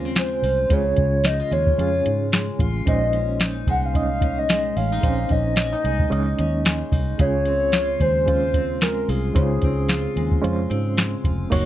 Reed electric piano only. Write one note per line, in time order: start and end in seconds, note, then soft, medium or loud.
0.00 0.69 G#3 medium
0.00 0.70 C#4 medium
0.00 0.71 F4 medium
0.00 0.72 G#4 medium
0.00 0.37 C5 medium
0.69 1.44 G#3 medium
0.69 1.45 C#4 medium
0.69 1.45 F4 medium
0.69 1.46 G#4 medium
1.78 2.53 G#3 medium
1.78 2.53 C#4 medium
1.78 2.54 F4 medium
1.78 2.54 G#4 medium
2.85 3.61 G#3 medium
2.85 3.61 C#4 medium
2.85 3.61 D#4 medium
2.85 3.62 C5 medium
3.94 4.69 G#3 medium
3.94 4.69 C#4 medium
3.94 4.70 D#4 medium
3.94 4.70 D#5 medium
5.01 5.77 G#3 medium
5.01 5.10 C4 medium
5.01 5.78 D#4 medium
5.01 5.78 C5 medium
5.09 5.81 C#4 medium
6.10 6.85 G#3 medium
6.10 6.86 C#4 medium
6.10 6.86 D#4 medium
6.10 6.87 D#5 loud
7.18 7.94 G#3 medium
7.18 7.94 C#4 medium
7.18 7.94 F4 medium
7.18 7.95 G#4 medium
8.26 9.02 G#3 medium
8.26 9.02 C#4 medium
8.26 9.03 F4 medium
8.26 9.03 C5 medium
9.34 10.10 G#3 medium
9.34 10.10 C#4 medium
9.34 9.43 D#4 soft
9.34 10.11 C5 medium
9.42 10.14 F4 medium
10.42 11.18 G#3 medium
10.42 11.18 C#4 medium
10.42 11.19 F4 medium
10.42 11.19 C5 medium
11.50 11.65 A#3 medium
11.50 11.65 D#4 medium
11.50 11.65 F#4 medium
11.50 11.65 C#5 medium